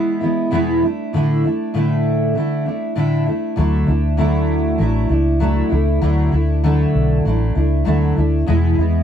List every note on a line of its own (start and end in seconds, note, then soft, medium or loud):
0.00 0.20 E3 medium
0.00 0.21 G#3 medium
0.00 0.20 B3 medium
0.00 0.19 E4 medium
0.21 0.50 E3 soft
0.21 0.51 G#3 soft
0.21 0.51 B3 soft
0.21 0.51 E4 medium
0.51 0.82 E2 medium
0.51 0.82 B2 medium
0.51 0.82 E3 medium
0.51 0.82 G#3 medium
0.51 0.83 B3 medium
0.51 0.81 E4 medium
0.82 1.13 A3 soft
0.82 1.13 D4 soft
0.82 1.13 E4 soft
1.13 1.44 A2 medium
1.13 1.44 D3 medium
1.13 1.44 A3 medium
1.13 1.44 D4 medium
1.13 1.43 E4 medium
1.44 1.74 A3 soft
1.44 1.74 D4 soft
1.44 1.74 E4 soft
1.74 2.35 A2 medium
1.74 2.34 D3 medium
1.74 2.35 A3 medium
1.74 2.37 D4 medium
1.74 2.37 E4 medium
2.35 2.66 D3 medium
2.35 2.66 A3 medium
2.35 2.65 D4 medium
2.35 2.65 E4 medium
2.66 2.95 A3 soft
2.66 2.95 D4 soft
2.66 2.96 E4 soft
2.96 3.27 A2 medium
2.96 3.27 D3 medium
2.96 3.27 A3 medium
2.96 3.27 D4 medium
2.96 3.25 E4 medium
3.26 3.56 A3 soft
3.26 3.57 D4 soft
3.26 3.57 E4 soft
3.56 3.83 D2 medium
3.56 3.88 D3 medium
3.56 3.88 F#3 medium
3.56 3.88 A3 medium
3.56 3.87 D4 medium
3.56 3.85 E4 medium
3.87 4.77 D2 medium
3.87 4.17 A3 soft
3.87 4.17 D4 soft
3.87 4.17 E4 medium
4.17 4.80 D3 medium
4.17 4.77 F#3 medium
4.17 4.78 A3 medium
4.17 4.79 D4 medium
4.17 4.80 E4 medium
4.78 5.06 A1 medium
4.78 5.10 F#3 medium
4.78 5.10 A3 medium
4.78 5.09 D4 medium
4.78 5.08 E4 medium
5.09 5.61 C#2 medium
5.09 5.40 A3 soft
5.09 5.40 D4 soft
5.09 5.40 E4 medium
5.40 5.72 F#3 medium
5.40 5.71 A3 medium
5.40 5.70 D4 medium
5.40 5.68 E4 medium
5.70 5.98 C#2 medium
5.70 6.01 A3 soft
5.70 6.01 D4 soft
5.70 6.02 E4 soft
6.01 6.28 D2 medium
6.01 6.33 D3 medium
6.01 6.33 F#3 medium
6.01 6.33 A3 medium
6.01 6.32 D4 medium
6.01 6.30 E4 medium
6.32 6.84 D2 medium
6.32 6.63 A3 soft
6.32 6.63 D4 soft
6.32 6.64 E4 medium
6.63 7.26 D3 medium
6.63 7.24 F#3 medium
6.63 7.25 A3 medium
6.63 7.25 D4 medium
6.63 7.27 E4 medium
6.95 7.20 B1 medium
7.25 7.51 A1 medium
7.25 7.56 F#3 medium
7.25 7.57 A3 medium
7.25 7.56 D4 medium
7.25 7.54 E4 medium
7.55 7.82 C#2 medium
7.55 7.85 A3 soft
7.55 7.85 D4 soft
7.55 7.85 E4 medium
7.85 8.13 D2 medium
7.85 8.17 D3 medium
7.85 8.17 F#3 medium
7.85 8.17 A3 medium
7.85 8.16 D4 medium
7.85 8.15 E4 medium
8.17 8.43 D2 medium
8.17 8.47 A3 soft
8.17 8.47 D4 soft
8.17 8.47 E4 soft
8.46 8.78 E2 medium
8.46 8.74 E2 loud
8.46 8.79 B2 medium
8.46 8.79 E3 medium
8.46 8.79 G#3 medium
8.46 8.78 B3 medium
8.46 8.77 E4 medium
8.78 9.03 E2 medium
8.78 9.03 E3 soft
8.78 9.03 G#3 soft
8.78 9.03 B3 soft
8.78 9.03 E4 medium